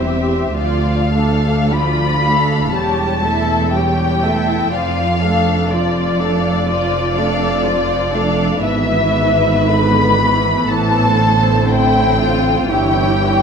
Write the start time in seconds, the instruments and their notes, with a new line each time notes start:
Already playing: double bass section E1, cello section E2, violin section G4 C5 E5
0.00 viola section C4 G4
0.56 double bass section D2, cello section D2, viola section F3 F4, violin section F4 D5 F5
1.15 viola section A3 D4, violin section A4 F5
1.72 viola section F3 F4, violin section F4 D5 B5
2.25 viola section A3 D4, violin section A4 F5
2.74 double bass section E1, cello section E2, viola section G3 G4, violin section G4 C#5 A5
3.24 viola section A3 E4, violin section A4 E5
3.73 viola section G3 G4, violin section G4 C#5 G5
4.23 viola section A3 E4, violin section A4 E5
4.72 double bass section F1, cello section F2, viola section F3 F4, violin section F4 D5 F5
5.22 viola section A3 D4, violin section A4 F5
5.70 viola section F3 F4, violin section F4 D5
6.20 viola section A3 D4, violin section A4 F5
6.69 viola section F3 F4, violin section F4 D5
7.18 viola section A3 D4, violin section A4 F5
7.65 viola section F3 F4, violin section F4 D5
8.13 viola section A3 D4, violin section A4 F5
8.63 double bass section G#1, cello section G#2, viola section E3 B3, violin section B4 E5
9.69 viola section D3 B3, violin section B5
10.20 viola section E3
10.69 double bass section A1, cello section A2, viola section E3, violin section A4 C5 A5
11.19 viola section D3
11.69 viola section C4, violin section E4 G5
12.21 violin section F4
12.70 double bass section G1, cello section G2, viola section E3 E4, violin section G4 C#5 G5
13.26 violin section C#5